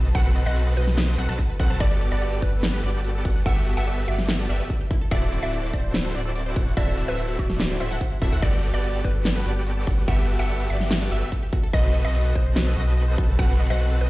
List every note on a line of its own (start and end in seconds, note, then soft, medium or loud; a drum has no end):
0.00 0.13 B1 loud
0.05 0.08 D#5 medium
0.15 0.44 B1 medium
0.15 0.44 C4 medium
0.15 0.43 F#4 medium
0.15 0.18 F#4 medium
0.15 0.43 A4 medium
0.15 0.43 B4 medium
0.15 0.43 F#5 loud
0.15 0.44 F#5 loud
0.15 0.41 F#5 loud
0.15 kick loud
0.15 closed hi-hat medium
0.26 0.31 B4 medium
0.36 0.39 D#5 loud
0.36 closed hi-hat medium
0.46 0.75 B1 loud
0.46 0.74 C4 loud
0.46 0.74 F#4 medium
0.46 0.74 A4 medium
0.46 0.74 B4 medium
0.46 0.51 C5 medium
0.46 0.72 D#5 loud
0.46 0.74 F#5 loud
0.56 0.59 F#4 medium
0.56 closed hi-hat medium
0.67 0.70 D#5 medium
0.77 1.16 B1 loud
0.77 1.16 C4 medium
0.77 1.16 F#4 medium
0.77 0.80 F#4 medium
0.77 1.16 A4 medium
0.77 1.16 B4 medium
0.77 1.72 B4 medium
0.77 1.16 D#5 medium
0.77 closed hi-hat medium
0.87 0.93 B4 medium
0.87 snare soft
0.98 1.01 D#5 loud
0.98 snare loud
0.98 closed hi-hat medium
1.08 1.13 C5 medium
1.18 1.27 B1 loud
1.18 1.26 C4 loud
1.18 1.26 F#4 medium
1.18 1.22 F#4 medium
1.18 1.26 A4 medium
1.18 1.26 B4 medium
1.18 1.26 F#5 loud
1.18 closed hi-hat medium
1.29 1.35 B1 loud
1.29 1.37 C4 medium
1.29 1.37 F#4 medium
1.29 1.37 A4 medium
1.29 1.37 B4 medium
1.29 1.32 D#5 medium
1.29 1.37 A5 loud
1.39 1.42 F#4 medium
1.39 kick medium
1.39 closed hi-hat medium
1.50 1.55 B4 medium
1.59 1.68 B1 medium
1.59 1.68 C4 loud
1.59 1.68 F#4 medium
1.59 1.68 A4 medium
1.59 1.68 B4 medium
1.59 1.63 D#5 loud
1.59 1.68 F#5 loud
1.59 kick loud
1.59 closed hi-hat medium
1.70 1.78 B1 medium
1.70 1.78 C4 medium
1.70 1.78 F#4 medium
1.70 1.78 A4 medium
1.70 1.78 B4 medium
1.70 1.75 C5 medium
1.70 1.78 A5 loud
1.80 2.09 G1 loud
1.80 2.09 B3 medium
1.80 2.09 F#4 medium
1.80 1.84 F#4 medium
1.80 2.09 G4 medium
1.80 2.09 A4 medium
1.80 2.09 D5 loud
1.80 2.07 D5 loud
1.80 2.09 D5 loud
1.80 kick loud
1.80 closed hi-hat medium
1.91 1.96 A4 medium
2.01 2.04 D5 loud
2.01 closed hi-hat medium
2.11 2.40 G1 loud
2.11 2.40 B3 medium
2.11 2.40 F#4 medium
2.11 2.40 G4 medium
2.11 2.40 A4 medium
2.11 2.17 B4 medium
2.11 2.40 D5 medium
2.11 2.38 D5 medium
2.22 2.25 F#4 medium
2.22 closed hi-hat medium
2.32 2.35 G4 medium
2.42 2.82 G1 loud
2.42 2.81 B3 medium
2.42 2.81 F#4 medium
2.42 2.46 F#4 medium
2.42 2.81 G4 medium
2.42 2.81 A4 medium
2.42 2.81 B4 loud
2.42 3.38 B4 medium
2.42 kick medium
2.42 closed hi-hat medium
2.53 2.58 A4 medium
2.63 2.66 D5 loud
2.63 snare loud
2.63 closed hi-hat medium
2.74 2.79 B4 medium
2.84 3.23 G1 loud
2.84 3.23 B3 loud
2.84 2.87 F#4 medium
2.84 3.23 F#4 medium
2.84 3.23 G4 medium
2.84 3.23 A4 medium
2.84 3.23 D5 loud
2.84 closed hi-hat medium
2.94 2.97 G4 medium
3.04 3.08 F#4 medium
3.04 closed hi-hat medium
3.15 3.20 A4 medium
3.25 3.44 G1 medium
3.25 3.39 B3 medium
3.25 3.39 F#4 medium
3.25 3.39 G4 medium
3.25 3.39 A4 medium
3.25 3.28 D5 loud
3.25 3.39 F#5 medium
3.25 kick loud
3.25 closed hi-hat medium
3.36 3.41 B4 medium
3.46 3.75 G1 loud
3.46 3.75 B3 loud
3.46 3.49 F#4 medium
3.46 3.75 F#4 medium
3.46 3.75 G4 medium
3.46 3.75 A4 medium
3.46 3.75 E5 loud
3.46 3.72 F#5 loud
3.46 kick loud
3.46 closed hi-hat medium
3.56 3.60 G4 medium
3.67 3.70 F#4 medium
3.67 closed hi-hat medium
3.77 4.06 G1 loud
3.77 4.05 B3 loud
3.77 4.06 F#4 medium
3.77 4.06 G4 medium
3.77 3.82 A4 medium
3.77 4.06 A4 medium
3.77 4.05 E5 loud
3.77 4.06 E5 loud
3.77 4.03 F#5 loud
3.87 3.90 D5 loud
3.87 closed hi-hat medium
3.98 4.03 B4 medium
4.08 4.47 G1 loud
4.08 4.47 B3 medium
4.08 4.11 F#4 medium
4.08 4.47 F#4 medium
4.08 4.47 G4 medium
4.08 4.47 A4 medium
4.08 4.47 D5 medium
4.08 5.03 E5 medium
4.08 closed hi-hat medium
4.19 4.22 G4 medium
4.19 snare soft
4.29 4.32 F#4 medium
4.29 snare loud
4.29 closed hi-hat medium
4.39 4.44 A4 medium
4.49 4.61 G1 loud
4.49 4.64 B3 medium
4.49 4.64 F#4 medium
4.49 4.64 G4 medium
4.49 4.64 A4 medium
4.49 4.53 D5 loud
4.49 4.63 E5 medium
4.49 4.64 E5 medium
4.49 closed hi-hat medium
4.60 4.65 B4 medium
4.70 4.73 F#4 medium
4.70 kick medium
4.70 closed hi-hat medium
4.81 4.84 G4 medium
4.91 4.94 E4 medium
4.91 kick loud
4.91 closed hi-hat medium
5.01 5.06 A4 medium
5.11 5.41 D1 loud
5.11 5.40 C4 medium
5.11 5.40 E4 medium
5.11 5.40 F#4 medium
5.11 5.40 A4 medium
5.11 5.40 D5 loud
5.11 5.15 D5 loud
5.11 5.40 D5 loud
5.11 5.38 E5 loud
5.11 kick loud
5.11 closed hi-hat medium
5.22 5.27 C5 medium
5.32 5.35 E4 medium
5.32 closed hi-hat medium
5.42 5.71 D1 loud
5.42 5.71 C4 medium
5.42 5.71 E4 medium
5.42 5.46 F#4 medium
5.42 5.71 F#4 medium
5.42 5.71 A4 medium
5.42 5.71 D5 medium
5.42 5.69 E5 loud
5.53 5.56 E4 medium
5.53 closed hi-hat medium
5.64 5.69 A4 medium
5.73 6.13 D1 loud
5.73 6.12 C4 medium
5.73 6.12 E4 medium
5.73 6.12 F#4 medium
5.73 6.12 A4 medium
5.73 6.12 C5 loud
5.73 6.12 C5 medium
5.73 6.69 D5 medium
5.73 5.77 D5 loud
5.73 kick medium
5.73 closed hi-hat medium
5.84 5.89 C5 medium
5.94 5.97 E4 medium
5.94 snare loud
5.94 closed hi-hat medium
6.05 6.08 F#4 medium
6.15 6.54 D1 loud
6.15 6.54 C4 loud
6.15 6.18 E4 medium
6.15 6.54 E4 medium
6.15 6.54 F#4 medium
6.15 6.54 A4 medium
6.15 6.54 D5 loud
6.15 closed hi-hat medium
6.25 6.31 A4 medium
6.36 6.39 D5 loud
6.36 closed hi-hat medium
6.46 6.51 C5 medium
6.56 6.75 D1 loud
6.56 6.70 C4 medium
6.56 6.59 E4 medium
6.56 6.70 E4 medium
6.56 6.70 F#4 medium
6.56 6.70 A4 medium
6.56 6.70 F#5 medium
6.56 kick loud
6.56 closed hi-hat medium
6.67 6.70 F#4 medium
6.77 7.06 D1 loud
6.77 7.06 C4 medium
6.77 6.80 E4 medium
6.77 7.06 E4 medium
6.77 7.06 F#4 medium
6.77 7.06 A4 medium
6.77 7.03 D5 loud
6.77 7.06 E5 loud
6.77 kick loud
6.77 closed hi-hat medium
6.88 6.93 A4 medium
6.98 7.01 D5 loud
6.98 closed hi-hat medium
7.08 7.37 D1 loud
7.08 7.37 C4 loud
7.08 7.37 E4 medium
7.08 7.37 F#4 medium
7.08 7.37 A4 medium
7.08 7.34 B4 loud
7.08 7.13 C5 medium
7.08 7.37 E5 loud
7.18 7.21 E4 medium
7.18 closed hi-hat medium
7.29 7.32 F#4 medium
7.39 7.78 D1 loud
7.39 7.78 C4 medium
7.39 7.42 E4 medium
7.39 7.78 E4 medium
7.39 8.34 F#4 medium
7.39 7.78 F#4 medium
7.39 7.78 A4 medium
7.39 7.78 D5 medium
7.39 kick medium
7.39 closed hi-hat medium
7.50 7.55 A4 medium
7.50 snare soft
7.60 7.63 D5 loud
7.60 snare loud
7.60 closed hi-hat medium
7.70 7.75 C5 medium
7.80 7.89 D1 loud
7.80 7.88 C4 loud
7.80 7.88 E4 medium
7.80 7.88 F#4 loud
7.80 7.88 A4 medium
7.80 7.86 C5 medium
7.80 7.88 E5 loud
7.80 closed hi-hat medium
7.91 7.97 D1 loud
7.91 8.00 C4 medium
7.91 8.00 E4 medium
7.91 8.00 F#4 medium
7.91 7.94 A4 medium
7.91 8.00 A4 medium
7.91 7.99 F#5 loud
7.91 8.00 F#5 loud
8.01 8.06 C5 medium
8.01 kick medium
8.01 closed hi-hat medium
8.12 8.17 E4 medium
8.22 8.30 D1 loud
8.22 8.30 C4 loud
8.22 8.30 E4 medium
8.22 8.30 F#4 medium
8.22 8.30 A4 medium
8.22 8.30 D5 medium
8.22 8.30 E5 loud
8.22 kick loud
8.22 closed hi-hat medium
8.32 8.40 D2 loud
8.32 8.40 C4 medium
8.32 8.40 E4 medium
8.32 8.40 F#4 medium
8.32 8.37 A4 loud
8.32 8.40 A4 medium
8.32 8.40 F#5 loud
8.42 8.72 G1 loud
8.42 8.71 B3 medium
8.42 8.46 F#4 medium
8.42 8.71 F#4 medium
8.42 8.71 G4 medium
8.42 8.71 A4 medium
8.42 8.71 D5 loud
8.42 8.69 D5 loud
8.42 8.71 D5 loud
8.42 kick loud
8.42 closed hi-hat medium
8.42 crash soft
8.53 8.58 A4 medium
8.63 8.66 D5 loud
8.63 closed hi-hat medium
8.74 9.02 G1 loud
8.74 9.02 B3 medium
8.74 9.02 F#4 medium
8.74 9.02 G4 medium
8.74 9.02 A4 medium
8.74 8.79 B4 medium
8.74 9.02 D5 medium
8.74 9.00 D5 medium
8.74 9.02 D5 medium
8.84 8.87 F#4 medium
8.84 closed hi-hat medium
8.94 8.97 G4 medium
9.04 9.44 G1 loud
9.04 9.44 B3 medium
9.04 9.43 F#4 medium
9.04 9.08 F#4 medium
9.04 9.43 G4 medium
9.04 9.43 A4 medium
9.04 10.00 B4 medium
9.04 9.43 B4 loud
9.04 9.43 B4 medium
9.04 kick medium
9.04 closed hi-hat medium
9.15 9.20 A4 medium
9.25 9.28 D5 loud
9.25 snare loud
9.25 closed hi-hat medium
9.36 9.41 B4 medium
9.46 9.85 G1 loud
9.46 9.85 B3 loud
9.46 9.49 F#4 medium
9.46 9.85 F#4 medium
9.46 9.85 G4 medium
9.46 9.85 A4 medium
9.46 9.85 D5 loud
9.46 closed hi-hat medium
9.56 9.60 G4 medium
9.67 9.70 F#4 medium
9.67 closed hi-hat medium
9.77 9.82 A4 medium
9.87 10.06 G1 medium
9.87 10.01 B3 medium
9.87 10.01 F#4 medium
9.87 10.01 G4 medium
9.87 10.01 A4 medium
9.87 9.91 D5 loud
9.87 10.01 F#5 medium
9.87 kick loud
9.87 closed hi-hat medium
9.98 10.03 B4 medium
10.08 10.37 G1 loud
10.08 10.37 B3 medium
10.08 10.11 F#4 medium
10.08 10.37 F#4 medium
10.08 10.37 G4 medium
10.08 10.37 A4 medium
10.08 10.37 E5 loud
10.08 10.34 F#5 loud
10.08 kick loud
10.08 closed hi-hat medium
10.08 crash soft
10.19 10.22 G4 medium
10.29 10.32 F#4 medium
10.29 closed hi-hat medium
10.39 10.68 G1 loud
10.39 10.68 B3 loud
10.39 10.68 F#4 medium
10.39 10.68 G4 medium
10.39 10.44 A4 medium
10.39 10.68 A4 medium
10.39 10.68 E5 loud
10.39 10.65 F#5 medium
10.49 10.53 D5 loud
10.49 closed hi-hat medium
10.60 10.65 B4 medium
10.70 11.09 G1 loud
10.70 11.09 B3 medium
10.70 11.09 F#4 medium
10.70 10.73 F#4 medium
10.70 11.09 G4 medium
10.70 11.09 A4 medium
10.70 11.09 D5 medium
10.70 11.65 E5 medium
10.70 closed hi-hat medium
10.81 10.84 G4 medium
10.81 snare soft
10.91 10.94 F#4 medium
10.91 snare loud
10.91 closed hi-hat medium
11.01 11.06 A4 medium
11.11 11.24 G1 loud
11.11 11.26 B3 medium
11.11 11.26 F#4 medium
11.11 11.26 G4 medium
11.11 11.26 A4 medium
11.11 11.15 D5 loud
11.11 11.26 E5 medium
11.11 closed hi-hat medium
11.22 11.27 B4 medium
11.32 11.35 F#4 medium
11.32 kick medium
11.32 closed hi-hat medium
11.43 11.46 G4 medium
11.53 11.56 F#4 medium
11.53 kick loud
11.53 closed hi-hat medium
11.63 11.69 A4 medium
11.73 12.03 B1 loud
11.73 12.02 C4 medium
11.73 12.02 F#4 medium
11.73 12.02 A4 medium
11.73 12.02 B4 medium
11.73 12.02 D#5 loud
11.73 12.00 D#5 loud
11.73 11.77 D#5 loud
11.73 12.02 D#5 loud
11.73 kick loud
11.73 closed hi-hat medium
11.73 crash soft
11.84 11.89 C5 medium
11.94 11.97 F#4 medium
11.94 closed hi-hat medium
12.05 12.33 B1 loud
12.05 12.33 C4 medium
12.05 12.33 F#4 medium
12.05 12.33 A4 medium
12.05 12.08 A4 medium
12.05 12.33 B4 medium
12.05 12.33 D#5 medium
12.05 12.31 D#5 loud
12.05 12.33 D#5 medium
12.15 12.18 F#4 medium
12.15 closed hi-hat medium
12.25 12.31 B4 medium
12.35 12.75 B1 loud
12.35 12.75 C4 medium
12.35 12.74 F#4 medium
12.35 12.74 A4 medium
12.35 12.74 B4 medium
12.35 13.31 C5 medium
12.35 12.74 D#5 loud
12.35 12.39 D#5 loud
12.35 12.74 D#5 loud
12.35 kick medium
12.35 closed hi-hat medium
12.46 12.51 C5 medium
12.56 12.60 F#4 medium
12.56 snare loud
12.56 closed hi-hat medium
12.67 12.70 A4 medium
12.77 13.16 B1 loud
12.77 13.16 C4 loud
12.77 13.16 F#4 medium
12.77 12.80 F#4 medium
12.77 13.16 A4 medium
12.77 13.16 B4 medium
12.77 13.16 D#5 loud
12.77 closed hi-hat medium
12.88 12.93 B4 medium
12.97 13.01 D#5 loud
12.97 closed hi-hat medium
13.08 13.13 C5 medium
13.18 13.37 B1 medium
13.18 13.32 C4 medium
13.18 13.32 F#4 medium
13.18 13.22 F#4 medium
13.18 13.32 A4 medium
13.18 13.32 B4 medium
13.18 13.32 A5 medium
13.18 kick loud
13.18 closed hi-hat medium
13.29 13.32 A4 medium
13.39 13.68 B1 loud
13.39 13.68 C4 loud
13.39 13.68 F#4 medium
13.39 13.42 F#4 medium
13.39 13.68 A4 medium
13.39 13.68 B4 medium
13.39 13.68 F#5 loud
13.39 13.65 F#5 loud
13.39 kick loud
13.39 closed hi-hat medium
13.39 crash soft
13.50 13.55 B4 medium
13.60 13.63 D#5 loud
13.60 closed hi-hat medium
13.70 13.99 B1 loud
13.70 13.99 C4 loud
13.70 13.99 F#4 medium
13.70 13.99 A4 medium
13.70 13.99 B4 medium
13.70 13.75 C5 medium
13.70 13.96 D#5 loud
13.70 13.99 F#5 loud
13.80 13.84 F#4 medium
13.80 closed hi-hat medium
13.91 13.94 A4 medium
14.01 14.10 B1 loud
14.01 14.10 C4 medium
14.01 14.10 F#4 medium
14.01 14.04 F#4 medium
14.01 14.10 A4 medium
14.01 14.10 B4 medium
14.01 14.10 D#5 medium
14.01 closed hi-hat medium